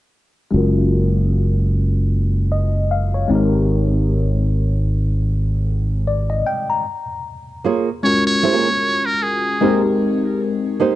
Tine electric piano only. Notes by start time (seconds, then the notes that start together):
0.51 G#3 C#4 F4
0.56 F#4 A#4
2.52 D#5
2.91 F5
3.14 C#5
3.28 G#3 C4 D#4
3.33 G4 A#4
6.07 D5
6.30 D#5
6.47 G5
6.70 A#5
8.03 G#3 C#4 F4 F#4 A#4
9.61 G#3 C4 D#4 G4 A#4